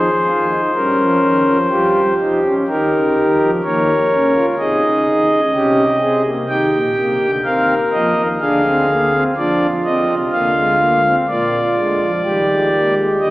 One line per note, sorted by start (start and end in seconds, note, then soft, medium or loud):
0.00 0.61 G#4 medium
0.00 2.14 C5 medium
0.27 0.56 D#2 medium
0.27 0.57 D#3 medium
0.27 0.47 F4 medium
0.51 0.71 D#4 medium
0.75 0.95 G2 medium
0.75 0.95 G3 medium
0.75 1.57 C#4 medium
0.75 1.57 A#4 medium
0.98 1.19 F2 medium
0.98 1.19 F3 medium
1.23 1.43 D#2 medium
1.23 1.43 D#3 medium
1.46 1.67 F2 medium
1.46 1.67 F3 medium
1.70 2.01 G2 medium
1.70 2.01 G3 medium
1.70 2.01 F4 medium
1.70 2.54 G4 medium
2.20 2.50 F2 medium
2.20 2.50 F3 medium
2.20 2.40 D#4 medium
2.43 2.64 C#4 medium
2.68 2.89 D#2 medium
2.68 2.89 D#3 medium
2.68 3.50 D#4 medium
2.68 3.50 G4 medium
2.68 3.50 A#4 medium
2.93 3.13 C#2 medium
2.93 3.13 C#3 medium
3.16 3.37 D#2 medium
3.16 3.37 D#3 medium
3.40 3.61 F2 medium
3.40 3.61 F3 medium
3.63 3.93 D#2 medium
3.63 3.93 D#3 medium
3.63 3.93 A#3 medium
3.63 4.46 A#4 medium
3.63 4.46 C#5 medium
4.11 4.41 C#2 medium
4.11 4.41 C#3 medium
4.11 4.32 C#4 medium
4.35 4.55 F4 medium
4.59 4.80 C2 medium
4.59 4.80 C3 medium
4.59 5.41 D#4 medium
4.59 5.41 G#4 medium
4.59 6.22 D#5 medium
4.83 5.04 C#2 medium
4.83 5.03 C#3 medium
5.07 5.27 D#2 medium
5.07 5.27 D#3 medium
5.30 5.51 C#2 medium
5.30 5.51 C#3 medium
5.54 6.36 C2 medium
5.54 6.36 C3 medium
5.54 5.83 C#4 medium
5.54 5.83 G4 medium
6.01 6.22 C4 medium
6.01 6.31 G#4 medium
6.25 6.45 A#3 medium
6.49 6.69 D#2 medium
6.49 6.69 D#3 medium
6.49 6.79 D#4 medium
6.49 7.31 G4 medium
6.49 7.31 G5 medium
6.73 6.93 A#1 medium
6.73 6.93 A#2 medium
6.97 7.17 C2 medium
6.97 7.17 C3 medium
6.97 7.27 A#3 medium
7.21 7.41 D2 medium
7.21 7.41 D3 medium
7.44 7.74 D#2 medium
7.44 7.74 D#3 medium
7.44 7.74 C4 medium
7.44 8.27 A#4 medium
7.44 7.74 F5 medium
7.92 8.13 F2 medium
7.92 8.13 F3 medium
7.92 8.22 A#3 loud
7.92 8.22 D#5 medium
8.16 8.37 D#2 medium
8.16 8.37 D#3 medium
8.40 9.23 D2 medium
8.40 9.23 D3 medium
8.40 8.61 D4 medium
8.40 9.24 G#4 medium
8.40 9.23 F5 medium
8.65 8.86 C4 medium
8.90 9.10 A#3 medium
9.13 9.34 C4 medium
9.36 9.66 F2 medium
9.36 9.66 F3 medium
9.36 9.67 D4 medium
9.36 11.02 F4 medium
9.36 9.66 D5 medium
9.85 10.05 D2 medium
9.85 10.05 D3 medium
9.85 10.15 C4 medium
9.85 10.15 D#5 medium
10.08 10.29 C2 medium
10.08 10.29 C3 medium
10.32 11.15 D2 medium
10.32 11.15 D3 medium
10.32 10.53 A#3 medium
10.32 11.15 F5 medium
10.56 10.77 G#3 medium
10.80 11.01 A#3 medium
11.05 11.25 C4 medium
11.28 11.59 A#1 medium
11.28 11.58 A#2 medium
11.28 11.58 A#3 medium
11.28 12.11 F4 medium
11.28 12.94 D5 medium
11.77 11.97 D2 medium
11.77 11.97 D3 medium
11.77 12.07 G#3 medium
12.01 12.21 F2 medium
12.01 12.21 F3 medium
12.24 13.07 D#2 medium
12.24 13.07 D#3 medium
12.24 12.45 G3 medium
12.24 13.30 G4 medium
12.47 12.69 G#3 medium
12.73 12.94 A#3 medium
12.96 13.17 G#3 medium
13.20 13.30 D2 medium
13.20 13.30 D3 medium
13.20 13.30 G3 medium
13.20 13.30 D#5 medium